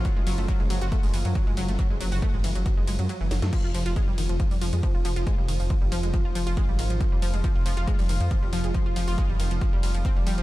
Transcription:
<<
  \new Staff \with { instrumentName = "Synth drone" } { \time 4/4 \key f \minor \tempo 4 = 138 <f f'>1~ | <f f'>1 | <f f'>1~ | <f f'>1~ |
<f f'>1~ | <f f'>1 | }
  \new Staff \with { instrumentName = "Synth arpeggio sound" } { \clef bass \time 4/4 \key f \minor ges16 aes16 ges16 a16 ges16 aes16 ges16 ges'16 a16 aes16 e16 ges16 ges16 aes16 ges16 a16 | ges16 aes16 ges16 ges'16 a16 aes16 e16 ges16 ges16 aes16 aes16 ges16 ges16 e16 ges16 a16 | f16 f'16 f16 f'16 aes16 g16 ees16 f16 f16 g16 f16 aes16 f16 f'16 f16 f'16 | aes16 g16 ees16 f16 f16 g16 f16 aes16 f16 f'16 f16 f'16 aes16 g16 ees16 f16 |
f16 g16 f16 aes16 f16 f'16 f16 f'16 aes16 g16 ees16 f16 f16 g16 f16 aes16 | f16 f'16 f16 f'16 aes16 g16 ees16 f16 f16 g16 g16 f16 c'16 g16 g16 f16 | }
  \new Staff \with { instrumentName = "Detuned saw bass" } { \clef bass \time 4/4 \key f \minor r16 ges,,16 ges,,16 ges,,16 r16 ges,,16 ges,,16 ges,,16 r16 ges,,16 ges,,16 ges,16 r16 ges,,16 ges,,16 ges,,16 | r16 ges,,16 ges,,16 ges,,16 r16 aes,,16 ges,,16 ges,,16 r16 ges,,16 ges,,16 ges,16 r16 ges,,16 ges,,16 ges,16 | r16 f,,16 f,,16 f,,16 r16 f,,16 f,,16 f,,16 r16 f,,16 f,,16 f,16 r16 f,,16 f,,16 f,,16 | r16 f,,16 f,,16 f,,16 r16 g,,16 f,,16 f,,16 r16 f,,16 f,,16 f,,16 r16 aes,,16 aes,,16 aes,,16 |
r16 f,,16 f,,16 f,,16 r16 f,,16 f,,16 f,,16 r16 f,,16 f,,16 f,16 r16 f,,16 f,,16 f,,16 | r16 f,,16 f,,16 f,,16 r16 g,,16 f,,16 f,,16 r16 f,,16 f,,16 f,,16 r16 f,,16 f,,16 f,,16 | }
  \new DrumStaff \with { instrumentName = "Drums" } \drummode { \time 4/4 <hh bd>8 <hho cymr>16 hh16 <hh bd>8 <hho cymr>16 hh16 <hh bd>16 hho16 <hho cymr>16 hh16 <hh bd>8 <hho cymr>16 hh16 | <hh bd>8 <hho cymr>16 hho16 <hh bd>8 <hho cymr>16 hh16 <hh bd>8 <hho cymr>16 hh16 hh8 <hho cymr sn>16 <hh sn>16 | <cymc hh bd>8 <hho cymr>16 hh16 <hh bd>8 <hho cymr>16 hh16 <hh bd>16 hho16 <hho cymr>16 hh16 <hh bd>8 <hho cymr>16 hh16 | <hh bd>8 <hho cymr>16 hho16 <hh bd>8 <hho cymr>16 hh16 <hh bd>8 <hho cymr>16 hh16 <hh bd>8 <hho cymr>16 hh16 |
<hh bd>8 <hho cymr>16 hh16 <hh bd>8 <hho cymr>16 hh16 <hh bd>16 hho16 <hho cymr>16 hh16 <hh bd>8 <hho cymr>16 hh16 | <hh bd>8 <hho cymr>16 hho16 <hh bd>8 <hho cymr>16 hh16 <hh bd>8 <hho cymr>16 hh16 <hh bd>8 <hho cymr>16 hh16 | }
>>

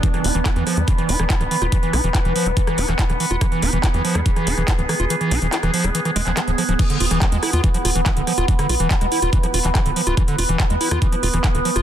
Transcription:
<<
  \new Staff \with { instrumentName = "Synth drone" } { \time 4/4 \tempo 4 = 142 <b b'>1~ | <b b'>1 | gis'1~ | gis'1 |
<b b'>1~ | <b b'>1~ | <b b'>1 | }
  \new Staff \with { instrumentName = "Acid bass" } { \clef bass \time 4/4 e16 e16 f'16 e16 e'16 e16 f16 gis16 e16 e16 f'16 e16 e'16 e16 e16 f'16 | e16 e16 f'16 e16 e'16 e16 f16 gis16 e16 e16 f'16 e16 e'16 e16 e16 f'16 | e16 e16 f'16 e16 e'16 e16 f16 gis16 e16 e16 f'16 e16 e'16 e16 e16 f'16 | e16 e16 f'16 e16 e'16 e16 f16 gis16 e16 e16 gis16 f16 e16 f16 f16 f16 |
e16 d16 f'16 e16 e16 gis16 e'16 f'16 e16 f16 f'16 e16 e16 d16 f16 f'16 | e16 d16 f'16 e16 r16 gis16 e'16 f'16 e16 f16 f'16 e16 e16 d16 f16 f'16 | e16 d16 f'16 e16 r16 gis16 e'16 f'16 e16 f16 f'16 e16 e16 d16 f16 f'16 | }
  \new Staff \with { instrumentName = "Analog synth bass" } { \clef bass \time 4/4 r8 e,,16 e,,16 r16 e,16 r16 e,16 r8 e,,16 e,,16 r16 d,,16 r16 e,,16 | r8 b,,16 e,,16 r16 e,,16 r16 e,,16 r8 e,,16 e,,16 r16 e,,16 r16 e,,16 | r8 e,,16 e,,16 r16 e,16 r16 e,16 r8 e,,16 e,,16 r16 d,,16 r16 e,,16 | r8 b,,16 e,,16 r16 e,,16 r16 e,,16 r8 e,,16 e,,16 r16 d,,16 r16 d,,16 |
r8 e,,16 e,,16 r16 e,16 r16 e,16 r8 e,,16 e,,16 r16 d,,16 r16 e,,16 | r8 b,,16 e,,16 r16 e,,16 r16 e,,16 r8 e,,16 e,,16 r16 d,,16 r16 d,,16 | r8 e,,16 e,,16 r16 e,16 r16 e,16 r8 e,,16 e,,16 r16 d,,16 r16 e,,16 | }
  \new DrumStaff \with { instrumentName = "Drums" } \drummode { \time 4/4 <hh bd>16 <hh ss>16 hho16 hh16 <hc hh bd ss>16 hh16 <hho ss>16 hh16 <hh bd ss>16 hh16 hho16 <hh ss>16 <hc hh bd>16 <hh ss>16 hho16 <hh ss>16 | <hh bd>16 hh16 <hho ss>16 hh16 <hc hh bd ss>16 hh16 hho16 hh16 <hh bd>16 <hh ss>16 hho16 <hc hh ss>16 <hc hh bd>16 <hh ss>16 hho16 hh16 | <hh bd ss>16 hh16 <hho ss>16 hh16 <hc hh bd ss>16 hh16 hho16 <hh ss>16 <hh bd>16 <hh ss>16 hho16 <hh ss>16 <hc hh bd>16 hh16 <hho ss>16 hh16 | <hh ss>16 hh16 <hho ss>16 hh16 <hc hh>16 <hh ss>16 hho16 <hh ss>16 hh16 <hh ss>16 hho16 <hc hh>16 <hc hh ss>16 hh16 <hho ss>16 hh16 |
<cymc hh bd>16 hh16 hho16 <hh ss>16 <hc hh bd>16 hh16 <hho ss>16 hh16 <hh bd>16 hh16 <hho ss>16 hh16 <hc hh bd>16 hh16 <hho ss>16 hh16 | <hh bd>16 <hh ss>16 hho16 hh16 <hc hh bd>16 <hh ss>16 hho16 hh16 <hh bd>16 <hh ss>16 hho16 <hc hh>16 <hc hh bd ss>16 hh16 hho16 hh16 | <hh bd ss>16 hh16 hho16 hh16 <hc hh bd ss>16 hh16 hho16 <hh ss>16 <hh bd>16 hh16 hho16 <hh ss>16 <hc hh bd>16 hh16 hho16 <hh ss>16 | }
>>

